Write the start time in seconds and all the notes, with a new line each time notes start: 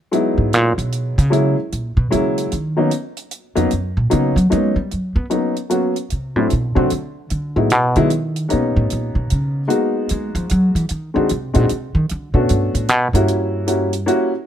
0.11 F#3 G#3 B3 D#4 E4, closed hi-hat
0.38 G#2
0.53 A#2, closed hi-hat
0.78 B2, closed hi-hat
0.92 closed hi-hat
1.18 C#3, closed hi-hat
1.30 F#3 G#3 A#3 C#4 E4, closed hi-hat
1.72 A#2, closed hi-hat
1.97 B2
2.10 C#3 F#3 G#3 A#3 C#4 E4, closed hi-hat
2.38 closed hi-hat
2.52 D#3, closed hi-hat
2.77 F#3 A#3 B3 C#4 D#4
2.91 closed hi-hat
3.17 closed hi-hat
3.31 closed hi-hat
3.55 F2 F#3 A#3 B3 C#4 D#4, closed hi-hat
3.71 F#2, closed hi-hat
3.97 A#2
4.10 C#3 F#3 A#3 B3 C#4 D#4, closed hi-hat
4.36 F#3, closed hi-hat
4.50 F#3 G#3 A#3 B3 C#4 D#4, closed hi-hat
4.76 G3
4.91 F#3, closed hi-hat
5.16 B3
5.30 F#3 A#3 B3 C#4 D#4, closed hi-hat
5.56 closed hi-hat
5.70 F#3 A#3 B3 C#4 F#4, closed hi-hat
5.96 closed hi-hat
6.10 C3, closed hi-hat
6.36 A2 F#3 A3 C4 D4 E4
6.50 B2, closed hi-hat
6.75 C3 F#3 A3 C4 D4 F#4
6.90 D3, closed hi-hat
7.30 D3, closed hi-hat
7.56 A2 F#3 G#3 B3 D#4 E4
7.70 B2, closed hi-hat
7.96 D3 F#3 G#3 B3 D#4 E4, closed hi-hat
8.10 D#3, closed hi-hat
8.36 closed hi-hat
8.48 G3 A#3 B3 C#4 D#4, closed hi-hat
8.53 B2
8.76 A2
8.90 A#2, closed hi-hat
9.15 B2
9.30 C#3, closed hi-hat
9.68 G#3 A#3 B3 D#4 F#4, closed hi-hat
10.09 G#3, closed hi-hat
10.35 F3, closed hi-hat
10.49 F#3, closed hi-hat
10.75 E3, closed hi-hat
10.89 D#3, closed hi-hat
11.14 D3 G#3 C4 D4 D#4 F#4
11.29 C3, closed hi-hat
11.53 A#2 G#3 C4 D4 D#4 F#4, closed hi-hat
11.69 C3, closed hi-hat
11.95 D#3
12.09 D3, closed hi-hat
12.34 B2 A3 B3 C#4 D4 F#4
12.49 G2, closed hi-hat
12.75 A2, closed hi-hat
12.88 B2, closed hi-hat
13.13 G2 G3 A#3 C#4 E4 F#4, closed hi-hat
13.28 closed hi-hat
13.66 G3 A#3 C#4 E4 F#4, closed hi-hat
13.93 closed hi-hat
14.06 G3 A#3 C#4 E4 F#4, closed hi-hat